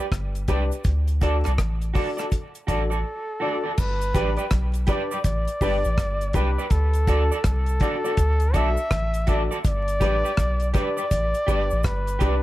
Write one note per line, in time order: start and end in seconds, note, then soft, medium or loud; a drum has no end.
0.12 0.47 G1 loud
0.12 kick loud
0.12 cross-stick loud
0.12 closed hi-hat medium
0.12 cabasa medium
0.35 closed hi-hat soft
0.35 cabasa soft
0.48 0.71 C2 medium
0.48 0.69 D4 medium
0.48 0.62 G4 medium
0.48 0.69 G4 medium
0.48 0.69 B4 medium
0.48 0.62 B4 medium
0.48 0.69 D5 loud
0.48 0.63 D5 medium
0.48 kick medium
0.48 closed hi-hat medium
0.48 cabasa soft
0.72 closed hi-hat soft
0.72 cabasa medium
0.84 1.43 D2 loud
0.84 kick loud
0.84 closed hi-hat medium
0.84 cabasa medium
1.08 closed hi-hat medium
1.08 cabasa medium
1.21 1.42 D4 medium
1.21 1.35 F#4 medium
1.21 1.42 F#4 medium
1.21 1.36 A4 medium
1.21 1.42 A4 medium
1.21 1.42 D5 medium
1.21 1.36 D5 medium
1.21 kick medium
1.21 closed hi-hat medium
1.21 cabasa soft
1.44 1.58 C2 medium
1.44 1.52 F#4 soft
1.44 1.51 A4 medium
1.44 1.51 D5 medium
1.44 cross-stick medium
1.44 closed hi-hat soft
1.44 cabasa medium
1.58 1.94 A1 medium
1.58 kick loud
1.58 cross-stick loud
1.58 closed hi-hat medium
1.58 cabasa medium
1.81 closed hi-hat soft
1.81 cabasa soft
1.94 2.15 D4 medium
1.94 2.08 F#4 medium
1.94 2.15 F#4 medium
1.94 2.08 A4 medium
1.94 2.15 A4 medium
1.94 2.09 D5 medium
1.94 2.16 D5 medium
1.94 kick loud
1.94 open hi-hat medium
1.94 cabasa soft
2.17 2.30 D4 medium
2.17 2.25 F#4 soft
2.17 2.30 F#4 medium
2.17 2.25 A4 medium
2.17 2.30 A4 medium
2.17 2.24 D5 medium
2.17 2.31 D5 medium
2.17 cross-stick medium
2.17 closed hi-hat soft
2.17 cabasa medium
2.32 kick medium
2.32 closed hi-hat medium
2.32 cabasa medium
2.55 closed hi-hat soft
2.55 cabasa soft
2.67 3.04 A1 medium
2.67 2.88 D4 medium
2.67 2.81 F#4 medium
2.67 2.89 F#4 medium
2.67 2.82 A4 medium
2.67 3.81 A4 medium
2.67 2.89 A4 medium
2.67 2.82 D5 medium
2.67 2.89 D5 medium
2.67 kick medium
2.67 closed hi-hat medium
2.67 cabasa soft
2.90 2.98 F#4 soft
2.90 2.97 A4 medium
2.90 2.97 D5 medium
2.90 cabasa medium
3.40 3.62 D4 medium
3.40 3.54 F#4 medium
3.40 3.62 F#4 medium
3.40 3.55 A4 medium
3.40 3.62 A4 medium
3.40 3.55 D5 medium
3.40 3.62 D5 loud
3.64 3.71 F#4 medium
3.64 3.71 A4 medium
3.64 3.70 D5 medium
3.77 4.14 G1 loud
3.77 4.52 B4 loud
3.77 kick loud
3.77 crash medium
3.77 cabasa medium
4.01 closed hi-hat medium
4.01 cabasa medium
4.14 4.37 A1 medium
4.14 4.35 D4 medium
4.14 4.28 G4 medium
4.14 4.35 G4 medium
4.14 4.29 B4 medium
4.14 4.35 B4 medium
4.14 4.29 D5 medium
4.14 4.36 D5 medium
4.14 kick medium
4.14 closed hi-hat medium
4.14 cabasa soft
4.37 4.45 G4 medium
4.37 4.44 B4 medium
4.37 4.44 D5 medium
4.37 closed hi-hat soft
4.37 cabasa medium
4.51 4.87 B1 medium
4.51 kick loud
4.51 cross-stick loud
4.51 closed hi-hat medium
4.51 cabasa medium
4.74 closed hi-hat soft
4.74 cabasa soft
4.87 5.08 D4 medium
4.87 5.01 G4 medium
4.87 5.08 G4 medium
4.87 5.02 B4 medium
4.87 5.09 B4 medium
4.87 5.02 D5 medium
4.87 5.09 D5 loud
4.87 5.23 D5 medium
4.87 kick loud
4.87 closed hi-hat medium
4.87 cabasa soft
5.11 5.18 G4 medium
5.11 5.18 B4 medium
5.11 5.17 D5 medium
5.11 cabasa medium
5.24 5.47 A1 medium
5.24 6.37 D5 medium
5.24 kick loud
5.24 closed hi-hat loud
5.24 cabasa medium
5.47 closed hi-hat medium
5.47 cabasa soft
5.61 5.84 G1 loud
5.61 5.82 D4 medium
5.61 5.82 G4 medium
5.61 5.75 G4 medium
5.61 5.82 B4 medium
5.61 5.76 B4 medium
5.61 5.82 D5 loud
5.61 5.76 D5 medium
5.61 kick medium
5.61 open hi-hat soft
5.61 cabasa medium
5.85 5.98 A1 medium
5.85 closed hi-hat soft
5.85 cabasa medium
5.98 6.33 G1 loud
5.98 kick loud
5.98 cross-stick loud
5.98 closed hi-hat medium
5.98 cabasa medium
6.21 closed hi-hat soft
6.21 cabasa medium
6.33 6.57 C2 medium
6.33 6.54 D4 medium
6.33 6.55 G4 medium
6.33 6.48 G4 medium
6.33 6.55 B4 medium
6.33 6.72 B4 medium
6.33 6.49 B4 medium
6.33 6.55 D5 loud
6.33 6.49 D5 medium
6.33 kick medium
6.33 closed hi-hat medium
6.33 cabasa soft
6.58 6.65 G4 medium
6.58 6.65 B4 medium
6.58 6.64 D5 medium
6.58 cabasa medium
6.70 7.06 D2 loud
6.70 7.44 A4 medium
6.70 kick loud
6.70 closed hi-hat medium
6.70 cabasa medium
6.93 closed hi-hat medium
6.93 cabasa medium
7.07 7.30 D2 medium
7.07 7.28 D4 medium
7.07 7.22 F#4 medium
7.07 7.28 F#4 medium
7.07 7.28 A4 medium
7.07 7.22 A4 medium
7.07 7.29 D5 medium
7.07 7.22 D5 medium
7.07 kick medium
7.07 closed hi-hat medium
7.07 cabasa medium
7.31 7.38 F#4 soft
7.31 7.38 A4 medium
7.31 7.37 D5 medium
7.31 cabasa medium
7.44 7.80 C2 medium
7.44 8.57 A4 medium
7.44 kick loud
7.44 cross-stick loud
7.44 closed hi-hat loud
7.44 cabasa medium
7.66 closed hi-hat soft
7.66 cabasa medium
7.80 8.01 D4 medium
7.80 7.95 F#4 medium
7.80 8.01 F#4 medium
7.80 7.95 A4 medium
7.80 8.02 A4 medium
7.80 7.95 D5 medium
7.80 8.02 D5 loud
7.80 kick loud
7.80 closed hi-hat medium
7.80 cabasa medium
8.04 8.16 D4 medium
8.04 8.16 F#4 medium
8.04 8.11 F#4 medium
8.04 8.16 A4 medium
8.04 8.11 A4 medium
8.04 8.10 D5 medium
8.04 8.16 D5 medium
8.04 cabasa medium
8.17 8.53 D2 loud
8.17 kick medium
8.17 closed hi-hat loud
8.17 cabasa medium
8.40 closed hi-hat medium
8.40 cabasa soft
8.54 8.77 B1 medium
8.54 8.75 D4 medium
8.54 8.67 F#4 medium
8.54 8.75 F#4 medium
8.54 8.68 A4 medium
8.54 8.75 A4 medium
8.54 8.68 D5 medium
8.54 8.75 D5 medium
8.54 9.40 E5 loud
8.54 kick medium
8.54 closed hi-hat medium
8.54 cabasa medium
8.77 cabasa medium
8.91 9.49 A1 medium
8.91 kick loud
8.91 cross-stick loud
8.91 closed hi-hat medium
8.91 cabasa medium
9.14 closed hi-hat medium
9.14 cabasa medium
9.27 9.48 D4 medium
9.27 9.41 F#4 medium
9.27 9.48 F#4 medium
9.27 9.41 A4 medium
9.27 9.48 A4 medium
9.27 9.42 D5 loud
9.27 9.48 D5 loud
9.27 kick loud
9.27 closed hi-hat medium
9.27 cabasa soft
9.51 9.58 F#4 medium
9.51 9.57 A4 medium
9.51 9.57 D5 medium
9.51 cabasa medium
9.64 10.00 G1 loud
9.64 10.71 D5 loud
9.64 kick loud
9.64 closed hi-hat medium
9.64 cabasa medium
9.88 closed hi-hat medium
9.88 cabasa medium
10.00 10.23 A1 medium
10.00 10.21 D4 medium
10.00 10.14 G4 medium
10.00 10.21 G4 medium
10.00 10.15 B4 medium
10.00 10.22 B4 medium
10.00 10.22 D5 loud
10.00 10.15 D5 medium
10.00 kick medium
10.00 closed hi-hat medium
10.00 cabasa soft
10.24 10.31 G4 medium
10.24 10.30 B4 medium
10.24 10.30 D5 medium
10.24 cabasa medium
10.37 10.73 B1 medium
10.37 kick loud
10.37 cross-stick loud
10.37 closed hi-hat medium
10.37 cabasa medium
10.60 closed hi-hat soft
10.60 cabasa medium
10.73 10.94 D4 medium
10.73 10.87 G4 medium
10.73 10.94 G4 medium
10.73 10.88 B4 medium
10.73 10.95 B4 medium
10.73 10.95 D5 medium
10.73 10.88 D5 medium
10.73 11.87 D5 loud
10.73 kick loud
10.73 closed hi-hat medium
10.73 cabasa medium
10.97 11.04 G4 soft
10.97 11.04 B4 medium
10.97 11.03 D5 medium
10.97 cabasa medium
11.11 11.34 A1 medium
11.11 kick medium
11.11 closed hi-hat loud
11.11 cabasa medium
11.34 closed hi-hat medium
11.34 cabasa soft
11.47 11.70 G1 medium
11.47 11.68 D4 medium
11.47 11.61 G4 medium
11.47 11.68 G4 medium
11.47 11.61 B4 medium
11.47 11.68 B4 medium
11.47 11.61 D5 medium
11.47 11.68 D5 loud
11.47 kick medium
11.47 closed hi-hat medium
11.47 cabasa soft
11.71 11.84 A1 medium
11.71 cabasa medium
11.84 12.20 G1 medium
11.84 12.43 B4 medium
11.84 kick loud
11.84 cross-stick loud
11.84 closed hi-hat medium
11.84 cabasa medium
12.07 closed hi-hat soft
12.07 cabasa medium
12.19 12.43 C2 medium
12.19 12.41 D4 loud
12.19 12.33 G4 medium
12.19 12.41 G4 medium
12.19 12.34 B4 medium
12.19 12.42 B4 medium
12.19 12.34 D5 medium
12.19 12.42 D5 loud
12.19 kick medium
12.19 closed hi-hat medium
12.19 cabasa soft